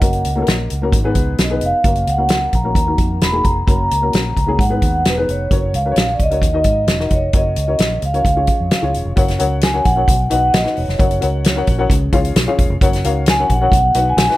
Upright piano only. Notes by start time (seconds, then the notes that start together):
0.01 A#3 C#4 F#4 A#4
0.35 A#3 C#4 F#4 A4
0.42 A#4
0.82 A#3 C#4 F#4 A#4
0.94 G#2
1.04 B3 D#4 G#4 B4
1.50 B3 D#4 G#4 B4
1.84 A#3 C#4 F#4 A#4
2.17 A#3 C#4 F#4 A#4
2.64 A#3 C#4 F#4 A#4
2.76 D#3
2.86 A#3 D#4 F#4 A#4
3.32 A#3 D#4 F#4 G#4
3.67 A#3 C#4 F#4 A#4
4.02 A#3 C#4 F#4 A#4
4.46 A#3 C#4 F#4 G#4
4.59 G#2
4.69 B3 D#4 G#4 B4
5.16 B3 D#4 G#4 B4
5.50 C#4 F#4 A#4 C#5
5.85 C#4 F#4 A#4 B4
5.91 C#5
6.30 C#4 F#4 A#4 C#5
6.42 D#3
6.53 D#4 F#4 A#4 D#5
6.99 D#4 F#4 A#4 D#5
7.33 C#4 F#4 A#4 C#5
7.67 C#4 F#4 A#4 C#5
8.13 C#4 F#4 A#4 C#5
8.25 C#3
8.36 C#4 F4 G#4 C#5
8.81 C#4 F4 G#4 C#5
9.16 C#4 F#4 A#4 C#5 F#5
9.38 C#4 F#4 A#4 C#5 F#5
9.73 C#4 F#4 A#4 C#5 F#5
9.96 C#4 F#4 A#4 C#5 F#5
10.08 B2
10.30 D#4 F#4 B4 D#5 F#5
10.64 D#4 F#4 B4 D#5 F#5
10.98 C#4 F#4 A#4 C#5 F#5
11.20 C#4 F#4 A#4 C#5 F#5
11.55 C#4 F#4 A#4 C#5 F#5
11.78 C#4 F#4 A#4 C#5 F#5
11.90 C#3
12.12 C#4 F4 G#4 C#5 F5
12.46 C#4 F4 G#4 C#5 F5
12.81 C#4 F#4 A#4 C#5 F#5
13.04 C#4 F#4 A#4 C#5 F5
13.38 C#4 F#4 A#4 C#5 F#5
13.60 C#4 F#4 A#4 C#5 F#5
13.73 B2
13.95 D#4 F#4 B4 D#5 F#5
14.28 D#4 F#4 B4 D#5 F#5